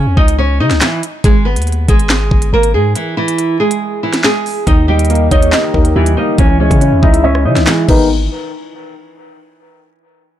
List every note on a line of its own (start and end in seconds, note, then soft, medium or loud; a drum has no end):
0.00 0.15 C#4 medium
0.00 0.15 C#5 medium
0.06 0.17 E2 loud
0.17 0.61 C#2 loud
0.17 0.36 D#4 medium
0.17 0.36 D#5 medium
0.17 kick loud
0.28 closed hi-hat medium
0.38 0.57 C#4 medium
0.38 0.58 C#5 medium
0.60 0.72 C#3 loud
0.60 0.79 D#4 medium
0.60 0.79 D#5 medium
0.71 0.81 C#2 loud
0.71 snare medium
0.71 closed hi-hat soft
0.81 1.01 E3 medium
0.81 1.00 E4 medium
0.81 snare loud
0.81 clap loud
0.81 closed hi-hat medium
1.03 closed hi-hat medium
1.24 1.58 G#1 loud
1.24 1.44 G#3 medium
1.24 1.43 G#4 medium
1.24 kick loud
1.24 closed hi-hat medium
1.45 1.86 B3 medium
1.45 1.86 B4 medium
1.56 1.87 D#2 loud
1.56 closed hi-hat medium
1.62 closed hi-hat medium
1.67 closed hi-hat medium
1.72 closed hi-hat soft
1.88 2.30 G#1 loud
1.88 2.50 G#3 medium
1.88 2.49 G#4 medium
1.88 kick loud
1.88 closed hi-hat medium
1.99 closed hi-hat medium
2.09 snare loud
2.09 clap medium
2.09 closed hi-hat medium
2.31 2.52 G1 loud
2.31 kick medium
2.42 closed hi-hat medium
2.53 2.76 G#1 loud
2.53 2.72 A#3 medium
2.53 2.72 A#4 medium
2.63 closed hi-hat medium
2.74 2.95 G#2 loud
2.74 2.93 G#3 medium
2.74 2.93 G#4 medium
2.96 3.15 E3 medium
2.96 3.15 E4 medium
2.96 closed hi-hat medium
3.17 3.58 E3 medium
3.17 3.57 E4 loud
3.28 closed hi-hat medium
3.38 closed hi-hat medium
3.60 4.01 G#3 medium
3.60 4.00 G#4 medium
3.71 closed hi-hat medium
4.03 4.22 E3 medium
4.03 4.22 E4 medium
4.13 snare medium
4.13 closed hi-hat medium
4.24 4.65 G#3 medium
4.24 4.65 G#4 medium
4.24 snare loud
4.24 clap loud
4.46 open hi-hat medium
4.66 5.29 D#2 loud
4.66 5.73 D#3 loud
4.66 6.37 D#3 medium
4.66 6.37 A#3 medium
4.66 4.86 D#4 medium
4.66 6.37 G4 medium
4.66 4.86 D#5 medium
4.66 kick loud
4.66 closed hi-hat medium
4.88 5.95 G3 medium
4.88 5.29 G3 medium
4.88 5.29 G4 medium
4.88 5.29 D#5 medium
4.99 closed hi-hat medium
5.05 closed hi-hat medium
5.10 6.16 A#3 medium
5.10 closed hi-hat medium
5.15 closed hi-hat soft
5.31 5.52 D#2 loud
5.31 6.39 D#4 medium
5.31 5.92 D#4 medium
5.31 5.52 C#5 medium
5.31 5.92 D#5 medium
5.31 kick loud
5.31 closed hi-hat medium
5.42 closed hi-hat medium
5.52 5.73 D#5 medium
5.52 6.39 D#5 loud
5.52 snare loud
5.52 clap medium
5.52 closed hi-hat medium
5.74 5.95 D#2 loud
5.74 6.39 D#3 medium
5.74 5.94 A#4 medium
5.74 kick medium
5.85 closed hi-hat medium
5.96 6.16 D#2 loud
5.96 6.15 E3 medium
5.96 6.39 G3 medium
5.96 6.15 E4 medium
6.06 closed hi-hat medium
6.17 6.39 A#3 medium
6.17 6.36 D#4 medium
6.17 6.36 D#5 medium
6.38 6.69 C#2 loud
6.38 7.87 C#3 medium
6.38 7.44 E3 medium
6.38 7.87 G#3 medium
6.38 6.57 C#4 loud
6.38 7.87 E4 medium
6.38 6.58 C#5 medium
6.38 kick loud
6.38 closed hi-hat medium
6.60 7.66 G#3 medium
6.60 7.00 C#4 medium
6.60 7.00 C#5 medium
6.60 7.01 C#5 medium
6.71 6.94 C#3 loud
6.71 kick medium
6.71 closed hi-hat medium
6.81 7.89 C#4 medium
6.81 closed hi-hat medium
6.92 7.02 E2 loud
7.02 7.47 C#2 loud
7.02 7.21 D#4 medium
7.02 7.89 E4 medium
7.02 7.22 D#5 medium
7.02 7.23 E5 medium
7.02 kick loud
7.14 closed hi-hat medium
7.24 7.43 C#4 medium
7.24 7.43 C#5 medium
7.24 7.44 D#5 medium
7.24 7.88 E5 loud
7.35 cross-stick medium
7.45 7.58 C#3 loud
7.45 7.89 E3 medium
7.45 7.64 D#4 medium
7.45 7.66 C#5 medium
7.45 7.65 D#5 medium
7.56 7.67 C#2 loud
7.56 snare medium
7.56 closed hi-hat soft
7.67 7.86 E3 medium
7.67 7.87 G#3 medium
7.67 7.86 E4 medium
7.67 snare loud
7.67 clap loud
7.67 closed hi-hat medium
7.89 8.28 G#1 loud
7.89 8.09 B2 medium
7.89 8.09 D#3 medium
7.89 8.09 G#3 medium
7.89 8.08 B3 medium
7.89 8.08 D#4 medium
7.89 8.09 D#4 medium
7.89 8.08 B4 medium
7.89 kick loud
7.89 crash medium